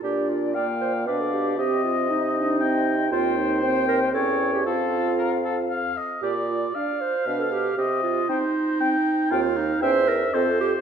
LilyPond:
<<
  \new Staff \with { instrumentName = "Flute" } { \time 3/4 \key bes \major \tempo 4 = 117 d''4 g''4 f''4 | ees''2 ees''4 | g''4 g''4 g''4 | f''2~ f''8 r8 |
r4 f''4 f''4 | r4 g''4 g''4 | g''4 g''4 ees''4 | }
  \new Staff \with { instrumentName = "Oboe" } { \time 3/4 \key bes \major r4 f''4 d''4 | ees''2 g''4 | c''2 cis''4 | a'4 bes'8 a'8 f''8 ees''8 |
d''4 f''2 | ees''4 c''4 g''4 | f''4 e''4 c''4 | }
  \new Staff \with { instrumentName = "Clarinet" } { \time 3/4 \key bes \major g'8 f'8 d''8 c''8 b'16 a'16 g'8 | g'8 f'8 ees'2 | f'8 ees'8 c''8 bes'8 a'8. g'16 | f'2 r4 |
g'8 f'8 d''8 c''8 b'16 a'16 g'8 | g'8 f'8 ees'2 | f'8 ees'8 c''8 bes'8 a'8 g'8 | }
  \new Staff \with { instrumentName = "French horn" } { \time 3/4 \key bes \major d'4 bes4 d'4 | c'4 ees'8 d'8 c'4 | c'4 c'4 cis'4 | c'2~ c'8 r8 |
r4 d'4 d'4 | r4 c'4 c'4 | c'4 cis'4 c'4 | }
  \new Staff \with { instrumentName = "Bassoon" } { \clef bass \time 3/4 \key bes \major bes,2 b,4 | c2. | ees,2 e,4 | f,2~ f,8 r8 |
bes,4 r4 b,4 | c4 r2 | ees,4 e,4 f,4 | }
>>